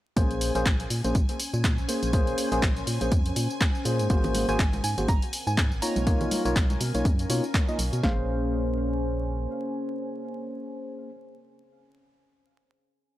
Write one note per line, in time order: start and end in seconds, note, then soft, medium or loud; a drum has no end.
0.16 0.51 A#1 loud
0.16 0.52 A#3 loud
0.16 0.52 C#4 medium
0.16 4.10 C#4 medium
0.16 0.52 G#4 medium
0.16 0.52 C5 loud
0.16 8.05 G#5 medium
0.16 kick loud
0.16 closed hi-hat medium
0.16 tambourine soft
0.31 closed hi-hat soft
0.31 tambourine soft
0.41 open hi-hat loud
0.41 tambourine medium
0.50 4.80 C5 medium
0.55 0.64 A#1 medium
0.55 0.65 A#3 loud
0.55 0.65 C#4 medium
0.55 0.65 G#4 medium
0.55 0.65 C5 loud
0.55 closed hi-hat soft
0.55 tambourine soft
0.66 0.87 A#1 loud
0.66 kick loud
0.66 clap loud
0.66 closed hi-hat medium
0.66 tambourine soft
0.80 closed hi-hat soft
0.80 tambourine soft
0.90 1.02 A#2 medium
0.90 open hi-hat medium
0.90 tambourine medium
1.04 1.13 A#1 medium
1.04 1.14 A#3 medium
1.04 1.14 C#4 medium
1.04 1.15 G#4 medium
1.04 1.15 C5 medium
1.04 closed hi-hat medium
1.04 tambourine soft
1.15 1.26 A#1 medium
1.15 kick loud
1.15 closed hi-hat medium
1.15 tambourine soft
1.29 closed hi-hat medium
1.29 tambourine soft
1.40 open hi-hat loud
1.40 tambourine medium
1.54 1.80 A#2 loud
1.54 tambourine soft
1.60 4.80 G#5 medium
1.60 closed hi-hat medium
1.64 kick loud
1.64 clap loud
1.64 tambourine soft
1.78 1.87 A#1 medium
1.78 tambourine soft
1.88 2.11 A#3 medium
1.88 2.11 C#4 medium
1.88 2.11 G#4 medium
1.88 2.11 C5 medium
1.88 open hi-hat loud
1.88 tambourine medium
2.03 2.35 A#1 medium
2.03 closed hi-hat soft
2.03 tambourine soft
2.13 2.48 A#3 loud
2.13 2.49 C#4 medium
2.13 2.49 G#4 medium
2.13 2.49 C5 loud
2.13 kick loud
2.13 closed hi-hat medium
2.13 tambourine soft
2.27 closed hi-hat soft
2.27 tambourine soft
2.38 open hi-hat loud
2.38 tambourine medium
2.52 2.61 A#1 medium
2.52 2.62 A#3 loud
2.52 2.62 C#4 medium
2.52 2.62 G#4 medium
2.52 2.62 C5 loud
2.52 closed hi-hat soft
2.52 tambourine soft
2.62 2.83 A#1 loud
2.62 kick loud
2.62 clap loud
2.62 closed hi-hat medium
2.62 tambourine soft
2.76 closed hi-hat soft
2.76 tambourine soft
2.87 2.99 A#2 medium
2.87 open hi-hat loud
2.87 tambourine medium
3.01 3.10 A#1 medium
3.01 3.11 A#3 medium
3.01 3.11 C#4 medium
3.01 3.11 G#4 medium
3.01 3.11 C5 loud
3.01 closed hi-hat medium
3.01 tambourine soft
3.12 3.33 F2 loud
3.12 kick loud
3.12 closed hi-hat medium
3.12 tambourine soft
3.26 closed hi-hat medium
3.26 tambourine soft
3.36 3.48 A#2 medium
3.36 open hi-hat loud
3.36 tambourine medium
3.50 tambourine soft
3.61 kick loud
3.61 clap loud
3.61 closed hi-hat medium
3.61 tambourine soft
3.75 tambourine soft
3.85 4.01 A#2 medium
3.85 4.07 A#3 medium
3.85 4.07 C#4 medium
3.85 4.08 G#4 medium
3.85 4.08 C5 medium
3.85 open hi-hat loud
3.85 tambourine medium
3.99 4.08 G#2 loud
3.99 closed hi-hat soft
3.99 tambourine soft
4.10 4.45 G#1 loud
4.10 4.45 A#3 loud
4.10 5.82 C4 medium
4.10 4.45 F#4 medium
4.10 4.45 G#4 medium
4.10 4.45 C5 loud
4.10 kick loud
4.10 closed hi-hat medium
4.10 tambourine soft
4.24 closed hi-hat soft
4.24 tambourine soft
4.24 low conga medium
4.35 5.82 F#5 medium
4.35 open hi-hat loud
4.35 tambourine medium
4.35 high conga loud
4.48 4.57 G#1 medium
4.48 4.59 A#3 loud
4.48 4.59 F#4 medium
4.48 4.59 G#4 medium
4.48 4.59 C5 loud
4.48 4.83 G#5 loud
4.48 closed hi-hat soft
4.48 tambourine soft
4.58 4.80 G#1 loud
4.58 8.03 A#4 loud
4.58 kick loud
4.58 clap loud
4.58 closed hi-hat medium
4.58 tambourine soft
4.73 closed hi-hat soft
4.73 tambourine soft
4.73 high conga medium
4.84 4.95 G#2 medium
4.84 5.07 G#5 medium
4.84 open hi-hat loud
4.84 tambourine medium
4.98 5.06 G#1 medium
4.98 5.08 A#3 medium
4.98 5.08 F#4 medium
4.98 5.08 G#4 medium
4.98 5.08 C5 medium
4.98 closed hi-hat medium
4.98 tambourine soft
5.08 5.48 A#5 loud
5.08 kick loud
5.08 closed hi-hat medium
5.08 tambourine soft
5.22 closed hi-hat medium
5.22 tambourine soft
5.33 open hi-hat loud
5.33 tambourine medium
5.47 5.73 G#2 medium
5.47 5.83 G#5 loud
5.47 tambourine soft
5.58 kick loud
5.58 clap loud
5.58 closed hi-hat medium
5.58 tambourine soft
5.72 5.80 G#1 medium
5.72 tambourine soft
5.82 6.04 A#3 medium
5.82 8.02 C#4 medium
5.82 6.04 D#4 medium
5.82 6.04 F4 medium
5.82 6.04 C#5 medium
5.82 6.52 A#5 loud
5.82 open hi-hat loud
5.82 tambourine medium
5.96 6.28 B1 medium
5.96 closed hi-hat soft
5.96 tambourine soft
5.96 high conga medium
6.06 6.42 A#3 loud
6.06 6.42 D#4 loud
6.06 6.42 F4 medium
6.06 6.42 C#5 loud
6.06 kick loud
6.06 closed hi-hat medium
6.06 tambourine soft
6.21 closed hi-hat soft
6.21 tambourine soft
6.21 low conga medium
6.31 open hi-hat loud
6.31 tambourine medium
6.31 high conga medium
6.45 6.54 B1 medium
6.45 6.55 A#3 loud
6.45 6.55 D#4 medium
6.45 6.56 F4 medium
6.45 6.56 C#5 loud
6.45 closed hi-hat soft
6.45 tambourine soft
6.56 6.77 B1 loud
6.56 kick loud
6.56 clap loud
6.56 closed hi-hat medium
6.56 tambourine soft
6.70 closed hi-hat soft
6.70 tambourine soft
6.70 high conga medium
6.80 6.92 B2 medium
6.80 open hi-hat loud
6.80 tambourine medium
6.94 7.03 B1 medium
6.94 7.05 A#3 medium
6.94 7.05 D#4 medium
6.94 7.05 F4 medium
6.94 7.05 C#5 loud
6.94 closed hi-hat soft
6.94 tambourine soft
7.05 7.26 F#2 loud
7.05 kick loud
7.05 closed hi-hat medium
7.05 tambourine soft
7.19 closed hi-hat medium
7.19 tambourine soft
7.29 7.41 B2 loud
7.29 7.43 A#3 loud
7.29 7.43 D#4 medium
7.29 7.43 F4 medium
7.29 7.43 C#5 loud
7.29 open hi-hat loud
7.29 tambourine medium
7.44 tambourine soft
7.54 kick loud
7.54 clap loud
7.54 closed hi-hat medium
7.54 tambourine soft
7.68 7.78 A#3 medium
7.68 7.78 D#4 medium
7.68 7.79 F4 medium
7.68 7.79 D#5 medium
7.68 tambourine soft
7.79 7.90 B1 loud
7.79 open hi-hat loud
7.79 tambourine medium
7.93 8.02 B2 medium
7.93 closed hi-hat soft
7.93 tambourine soft
8.03 9.47 A#1 loud
8.03 11.08 A#3 medium
8.03 11.09 C#4 medium
8.03 11.09 G#4 medium
8.03 11.10 C5 loud
8.03 11.09 F5 medium
8.03 kick loud
8.03 snare loud
8.12 11.18 C5 medium
8.20 11.25 G#5 medium